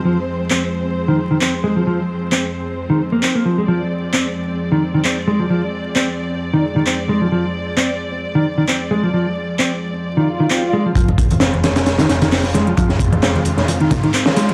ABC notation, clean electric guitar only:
X:1
M:4/4
L:1/16
Q:"Swing 16ths" 1/4=132
K:Fdor
V:1 name="Clean electric guitar" clef=bass
F, z3 C z4 E, z E, C z A, F, | F, z3 C z4 E, z B, C B, F, A, | F, z3 C z4 E, z E, C z A, F, | F, z3 C z4 E, z E, C z A, F, |
F, z3 C z4 E, z E, C z A, F, | F, z3 C z4 E, z E, C z A, F, | F, z3 C z4 E, z E, C z A, F, | F, z3 C z4 E, z E, C z A, F, |]